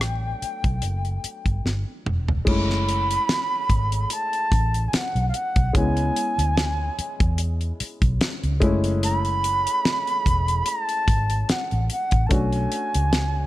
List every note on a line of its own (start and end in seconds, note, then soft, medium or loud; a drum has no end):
0.00 0.32 A1 medium
0.00 2.42 F#3 soft
0.00 2.42 A3 medium
0.00 2.43 B3 medium
0.00 2.43 D4 medium
0.00 1.64 G5 medium
0.00 cross-stick medium
0.00 closed hi-hat medium
0.42 muted fingered electric bass stroke soft
0.42 closed hi-hat medium
0.64 0.80 B1 medium
0.64 kick medium
0.64 closed hi-hat soft
0.82 1.17 F#1 medium
0.82 closed hi-hat medium
1.05 closed hi-hat soft
1.24 muted fingered electric bass stroke soft
1.24 closed hi-hat medium
1.46 1.62 G1 medium
1.46 kick medium
1.46 closed hi-hat soft
1.65 1.83 G1 medium
1.65 snare soft
2.06 2.40 E1 medium
2.06 mid tom medium
2.28 floor tom medium
2.45 3.16 F#1 loud
2.45 5.70 G#3 medium
2.45 5.71 A3 medium
2.45 5.71 C#4 medium
2.45 5.72 E4 medium
2.45 4.15 B5 loud
2.45 kick loud
2.45 crash medium
2.70 snare soft
2.89 closed hi-hat medium
3.11 closed hi-hat medium
3.29 snare loud
3.29 closed hi-hat medium
3.70 4.04 G#1 medium
3.70 kick medium
3.70 closed hi-hat medium
3.92 closed hi-hat medium
4.10 4.90 A5 loud
4.10 closed hi-hat medium
4.33 closed hi-hat soft
4.52 4.86 A1 loud
4.52 kick medium
4.52 closed hi-hat medium
4.74 closed hi-hat soft
4.88 4.97 G#5 medium
4.93 5.28 F#5 medium
4.93 muted fingered electric bass stroke medium
4.93 snare loud
4.93 closed hi-hat medium
5.15 5.31 B1 medium
5.15 closed hi-hat soft
5.28 5.37 F5 medium
5.34 5.78 F#5 medium
5.34 closed hi-hat medium
5.56 5.72 B1 medium
5.56 kick medium
5.56 closed hi-hat medium
5.73 6.10 C#2 medium
5.73 8.57 G#3 medium
5.73 8.58 B3 medium
5.73 8.58 C#4 medium
5.73 8.59 E4 medium
5.73 7.40 G#5 medium
5.73 kick loud
5.73 closed hi-hat medium
5.97 closed hi-hat soft
6.16 closed hi-hat medium
6.38 6.89 D2 medium
6.38 closed hi-hat medium
6.57 snare loud
6.57 closed hi-hat medium
6.99 muted fingered electric bass stroke soft
6.99 closed hi-hat medium
7.20 7.71 E2 loud
7.20 kick loud
7.20 closed hi-hat soft
7.38 closed hi-hat medium
7.61 closed hi-hat soft
7.80 muted fingered electric bass stroke soft
7.80 closed hi-hat medium
8.02 8.18 B1 medium
8.02 kick medium
8.02 closed hi-hat medium
8.21 snare loud
8.21 closed hi-hat medium
8.43 8.59 C#2 medium
8.43 closed hi-hat soft
8.60 9.66 F#1 loud
8.60 11.85 G#3 medium
8.60 11.86 A3 medium
8.60 11.86 C#4 medium
8.60 11.87 E4 medium
8.60 kick loud
8.60 closed hi-hat medium
8.84 closed hi-hat medium
9.03 10.70 B5 loud
9.03 closed hi-hat loud
9.25 closed hi-hat soft
9.44 closed hi-hat medium
9.67 closed hi-hat medium
9.85 snare loud
9.85 closed hi-hat medium
10.07 closed hi-hat soft
10.26 10.61 E1 medium
10.26 kick medium
10.26 closed hi-hat medium
10.48 closed hi-hat soft
10.66 11.52 A5 loud
10.66 closed hi-hat medium
10.89 closed hi-hat soft
11.08 11.43 G#1 medium
11.08 kick medium
11.08 closed hi-hat medium
11.30 closed hi-hat medium
11.49 11.91 F#5 medium
11.49 muted fingered electric bass stroke soft
11.49 snare loud
11.49 closed hi-hat medium
11.71 11.88 A1 medium
11.71 closed hi-hat soft
11.90 12.28 F#5 medium
11.90 closed hi-hat medium
12.11 12.28 A1 medium
12.11 kick medium
12.11 closed hi-hat soft
12.27 13.47 A3 medium
12.27 13.47 C#4 medium
12.27 12.34 A5 medium
12.31 12.66 B1 loud
12.31 13.47 D4 medium
12.31 13.47 F#4 medium
12.31 13.47 G#5 medium
12.31 kick loud
12.31 closed hi-hat medium
12.53 closed hi-hat soft
12.72 closed hi-hat medium
12.94 13.45 C#2 medium
12.94 closed hi-hat medium
13.13 snare medium
13.13 closed hi-hat medium